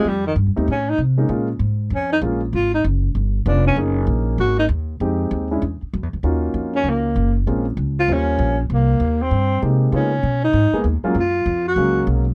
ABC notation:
X:1
M:4/4
L:1/8
Q:"Swing" 1/4=195
K:Ebm
V:1 name="Tenor saxophone"
=G, E, z2 D E z2 | z4 D E z2 | F E z4 =D ^C | z4 G E z2 |
z8 | z3 D B,3 z | z3 F D3 z | B,3 =C3 z2 |
D3 E3 z2 | F3 G3 z2 |]
V:2 name="Grand piano"
z3 [=G,=A,=CE] z3 [_A,B,DE] | [A,B,DF] z4 z [A,B,DF] z | z6 [=B,^C=DF]2 | [B,DEA]4- [B,DEA] z3 |
[A,=CE=G]3 [A,D=D_F] z4 | [B,DEFG]4- [B,DEFG] z3 | [A,B,=CDF] z3 [=G,B,DF=c]3 z | z6 [A,B,=CE=G]2 |
[A,B,CEF] z4 [A,B,CEA] z [G,A,B,DF] | z4 [G,A,B,Df]3 z |]
V:3 name="Upright bass" clef=bass
F,,2 (3=G,, F,, E,, =A,,2 =C,2 | B,,2 A,,2 F,,2 B,,,2 | A,,,2 G,,,2 =G,,,2 F,,,2 | G,,,2 B,,,2 A,,,2 E,,2 |
F,,2 E,,2 =E,, z (3^F,, E,, =D,, | E,,2 F,,2 D,,2 G,,,2 | B,,,2 D,,2 E,,2 B,,,2 | =C,,2 E,,2 =G,,2 =C,2 |
D,2 C,2 A,, z E,, z | G,,2 F,,2 D,,2 C,,2 |]